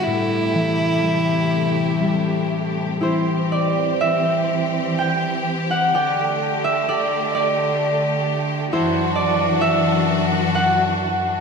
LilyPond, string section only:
\new Staff \with { instrumentName = "String section" } { \time 3/4 \key c \lydian \tempo 4 = 63 << { g'2. | g'2.~ | g'2. | <fis, fis'>2. | } \\ { <c a>2. | <e c'>2. | <d a>2. | <e d'>2. | } >> }